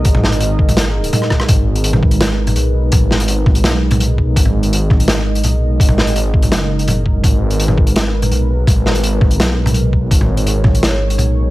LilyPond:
<<
  \new Staff \with { instrumentName = "Analog synth pad" } { \time 4/4 \key gis \minor \tempo 4 = 167 << { dis''1 | b'1~ | b'1 | dis''1~ |
dis''1 | b'1~ | b'1 | cis''1 | } \\ { <gis dis' ais'>1~ | <gis dis' ais'>1~ | <gis dis' ais'>1~ | <gis dis' ais'>1~ |
<gis dis' ais'>1~ | <gis dis' ais'>1~ | <gis dis' ais'>1~ | <gis dis' ais'>1 | } >> }
  \new Staff \with { instrumentName = "Detuned saw bass" } { \clef bass \time 4/4 \key gis \minor gis,,2 gis,,4 r4 | gis,,2. b,,4 | gis,,2 b,,2 | gis,,2. b,,4 |
gis,,2 fis,,2 | gis,,2. b,,4 | gis,,2 b,,2 | gis,,2. b,,4 | }
  \new DrumStaff \with { instrumentName = "Drums" } \drummode { \time 4/4 <hh bd>16 toml16 sn16 hh16 hh8 bd16 <hh toml>16 <hh sn>8. hh16 <hh toml>16 ss16 <bd ss>16 ss16 | <hh bd toml>8. hh16 hh16 toml16 bd16 hh16 <hh sn>8. <hh toml>16 hh4 | <hh bd toml>8 sn16 hh16 hh8 <bd toml>16 hh16 <hh sn>8. <hh toml>16 hh8 bd8 | <hh bd>16 toml8 hh16 hh8 <bd toml>16 hh16 <hh sn>8. hh16 <hh toml>4 |
<hh bd>16 toml16 sn16 hh16 hh8 bd16 <hh toml>16 <hh sn>8. hh16 <hh toml>8 bd8 | <hh bd toml>8. hh16 hh16 toml16 bd16 hh16 <hh sn>8. <hh toml>16 hh4 | <hh bd toml>8 sn16 hh16 hh8 <bd toml>16 hh16 <hh sn>8. <hh toml>16 hh8 bd8 | <hh bd>16 toml8 hh16 hh8 <bd toml>16 hh16 <hh sn>8. hh16 <hh toml>4 | }
>>